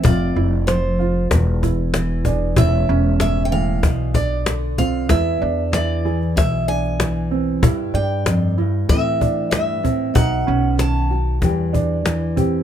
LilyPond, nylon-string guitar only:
\new Staff \with { instrumentName = "Nylon-string guitar" } { \clef bass \time 4/4 \key e \phrygian \tempo 4 = 95 << { c'4. f'8 b4. gis'8 | cis'2 d'4. f'8 | b4. gis'2 b8 | d'2 <e a c' e'>2 |
dis'4. fis'8 <e g d' g'>4. g'8 | } \\ { f,4 f4 e,4 e4 | e,4 g,8 a,8 b,4 d4 | e,4 e4 b,4 e4 | g,4 f,8 g,8 a,4 g,8 a,8 |
b,4 dis4 e,4 e4 | } >> }